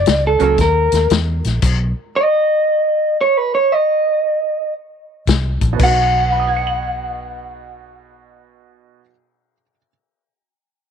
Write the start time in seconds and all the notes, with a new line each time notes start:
Already playing: D5
0.06 C#2, snare, closed hi-hat
0.27 A4
0.39 C#2 F#3 A#3 C#4 F#4 A#4, closed hi-hat
0.43 A4
0.58 D#2 A#4, kick, snare, closed hi-hat
0.92 D#2, snare, closed hi-hat
1.10 E2, snare, closed hi-hat
1.44 A#1, snare, closed hi-hat
1.62 B1, kick, closed hi-hat, crash
2.16 D#5
3.21 C#5
3.37 B4
3.55 C#5
3.72 D#5
5.27 C2, kick, snare, closed hi-hat
5.61 A#1, kick, closed hi-hat
5.73 B2 B3
5.79 B1 D#4 F#4, kick, crash
5.84 F#5
6.32 B5
6.40 D#6
6.47 G#6
6.56 C#7
6.67 F#7